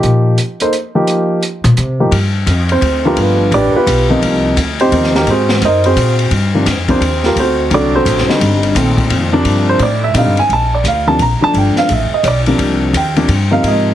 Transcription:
Already playing: upright piano F3 A#3 D#4 G4
0.03 upright bass A#2, closed hi-hat
0.38 closed hi-hat
0.60 upright piano A#3 D#4 A4 C5, closed hi-hat
0.73 closed hi-hat
0.95 upright piano F3 A#3 D#4 G4
1.07 closed hi-hat
1.43 closed hi-hat
1.64 upright bass A#2, closed hi-hat
1.77 upright bass C3, closed hi-hat
2.00 upright piano F3 A#3 D#4 G4
2.11 upright bass G2, kick, ride
2.46 upright bass F2, kick, hi-hat pedal, ride
2.69 upright piano C4 C5, ride
2.81 upright bass D2, kick, ride
3.05 upright piano F3 A3 A#3 B3 D4 F4 G4 A#4
3.16 upright bass G1, upright piano B4, kick, ride
3.20 upright piano B3 F4
3.51 upright bass A1, upright piano D4 G4 B4 D5, kick, ride
3.71 upright piano A#4
3.76 upright piano B3 F4 G4 B4
3.86 upright bass B1, kick, hi-hat pedal, ride
4.10 upright piano C3 F3 A#3 D#4
4.21 upright bass C2, kick, ride
4.56 upright bass D2, kick, hi-hat pedal, ride
4.80 upright piano C4 D#4 G4 C5, ride
4.91 upright bass D#2, upright piano C3 F3 A#3 D#4, kick, ride
5.04 snare
5.15 upright piano A#3 D#4 G4 A#4, snare
5.26 upright bass G#2, upright piano C5, kick, ride
5.31 upright piano C4 F#4 G#4
5.49 snare
5.61 upright bass F#2, upright piano D#5, kick, hi-hat pedal, ride
5.65 upright piano D#4 A#4 C5
5.84 upright piano C4 F#4 G#4 C5, ride
5.96 upright bass A#2, kick, hi-hat pedal, ride
6.19 ride
6.31 upright bass G2, kick, ride
6.54 upright piano C3 F3 A#3 D4
6.66 upright bass F2, kick, snare, hi-hat pedal, ride
6.88 upright piano C3 F3 A#3 C4 D4 C5, kick, ride
7.00 upright bass D#2, kick, ride
7.23 upright piano A#3 F4 G4 A#4, snare
7.35 upright bass D2, kick, ride
7.40 upright piano C4 F#4 A4 C5
7.70 upright bass C2, upright piano D3 F#3 A3 C4, kick, ride
7.74 upright piano D4 F#4 A4 D5
7.95 upright piano C4 F#4 A4 C5
8.05 upright bass A1, kick, hi-hat pedal, ride
8.18 snare
8.27 upright piano D3 G3 C4 D#4, muted upright bass stroke, snare
8.40 upright bass G1, kick, ride
8.63 ride
8.75 upright bass A#1, upright piano A#2 D#3 A3 C4, kick, hi-hat pedal, ride
8.97 kick, ride
9.10 upright bass F2, kick, ride
9.33 upright piano C3 F3 A#3 D4
9.44 upright bass G2, kick, ride
9.69 upright piano C5
9.79 upright bass A2, upright piano D5, kick, ride
10.04 upright piano E5
10.14 upright bass A#2, upright piano D3 G3 C4 D#4 F5, kick, hi-hat pedal, ride
10.25 upright bass G2
10.37 upright bass F2, upright piano G#5, ride
10.49 upright bass A#1, kick, ride
10.53 upright piano A5
10.75 upright piano D5
10.84 upright bass D2, kick, hi-hat pedal, ride
10.88 upright piano F5
11.07 upright piano C3 F3 A#3 D4 A5
11.19 upright bass A#1, upright piano A#5, kick, ride
11.40 upright piano D3 F3 A3 D4 A5, muted upright bass stroke
11.54 upright bass G1, kick, ride
11.58 upright piano G5
11.75 upright piano F5, muted upright bass stroke, snare
11.89 upright bass A1, kick, hi-hat pedal, ride
11.93 upright piano E5
12.10 upright piano D#5, muted upright bass stroke
12.23 upright bass B1, upright piano C#5, kick, hi-hat pedal, ride
12.28 upright piano D5
12.46 upright piano C3 F3 A#3 D4, ride
12.58 upright bass C2, kick, ride
12.93 upright bass D#2, upright piano G5, kick, hi-hat pedal, ride
13.16 upright piano C3 F3 A#3 D4, ride
13.28 upright bass G2, kick, ride
13.51 upright piano C3 F3 A#3 D#4 F5
13.63 upright bass G#2, kick, ride
13.67 upright piano D#5

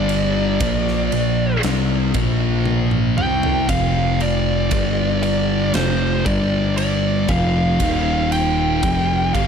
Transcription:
Already playing: picked electric bass G1, distorted electric guitar G2 D3 G3, lead electric guitar D5
0.09 ride
0.60 picked electric bass A#1, distorted electric guitar A#2 F3 A#3, kick, ride
0.88 snare
1.12 picked electric bass A#1, distorted electric guitar A#2 F3, ride
1.63 picked electric bass C2, distorted electric guitar C3 G3 C4, snare, ride
2.14 picked electric bass A#1, distorted electric guitar A#2 F3 A#3, kick, ride
2.66 high tom
2.91 mid tom
3.17 picked electric bass C2, distorted electric guitar C3 G3 C4, lead electric guitar G5, mid tom
3.43 floor tom
3.69 picked electric bass F1, distorted electric guitar F2 C3 F3, lead electric guitar F5, kick, ride
4.20 lead electric guitar D5, ride
4.71 picked electric bass G1, distorted electric guitar G2 D3 G3, kick, ride
5.23 lead electric guitar D5, ride
5.74 picked electric bass F1, distorted electric guitar F2 C3 F3, lead electric guitar C5, snare, ride
6.25 picked electric bass G1, distorted electric guitar G2 D3 G3, lead electric guitar D5, kick, ride
6.77 lead electric guitar D5, ride
7.28 picked electric bass F1, distorted electric guitar F2 C3 F3, lead electric guitar F5, kick, ride
7.80 picked electric bass D#1, distorted electric guitar D#2 A#2 D#3, kick, ride
8.32 lead electric guitar G5, ride
8.83 picked electric bass F1, distorted electric guitar F2 C3 F3, kick, ride
9.34 picked electric bass G1, distorted electric guitar G2 D3 G3, lead electric guitar F5, kick, ride

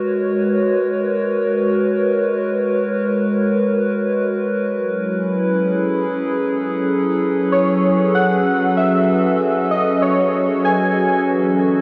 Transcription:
Already playing: ambient pad G#3 F#4 A#4 B4 C#5
4.73 ambient pad F#3
4.84 ambient pad C#4 E4
5.42 ambient pad G#4 A4
7.52 synth keys C#5
7.84 ambient pad F#4
8.15 synth keys F#5
8.77 synth keys E5
9.71 synth keys D#5
10.02 synth keys C#5
10.65 synth keys G#5
11.29 ambient pad E3
11.71 ambient pad D4

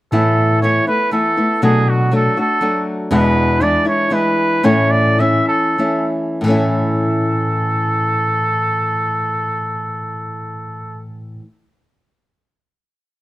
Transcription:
0.12 tine electric piano A2, nylon-string guitar A2 E3 A3 B3 E4, trumpet A4
0.62 nylon-string guitar E3 A3 B3 E4, trumpet C#5
0.87 nylon-string guitar A3 B3 E4, trumpet B4
1.11 nylon-string guitar E3 A3 B3 E4, trumpet A4
1.37 nylon-string guitar A3 B3 E4
1.62 nylon-string guitar B2 F#3 A3 D4 F#4, tine electric piano B2, trumpet G#4
1.89 trumpet F#4
2.11 nylon-string guitar F#3 A3 D4 F#4, trumpet A4
2.37 nylon-string guitar A3 D4 F#4, trumpet A4
2.61 nylon-string guitar F#3 A3 D4 F#4
3.11 nylon-string guitar E2 B2 E3 G#3 D4 E4, tine electric piano E2, trumpet B4
3.60 nylon-string guitar E3 G#3 D4 E4, trumpet D5
3.85 nylon-string guitar E3 G#3 D4 E4, trumpet C#5
4.10 nylon-string guitar E3 G#3 D4 E4, trumpet B4
4.63 nylon-string guitar A2 E3 A3 C#4 E4, tine electric piano A2, trumpet C#5
4.91 trumpet D5
5.19 nylon-string guitar E3 A3 C#4 E4, trumpet E5
5.48 trumpet A4
5.78 nylon-string guitar E3 A3 C#4 E4
6.41 nylon-string guitar A2 E3, tine electric piano A2, trumpet A4
6.46 nylon-string guitar A3 C#4
6.50 nylon-string guitar E4

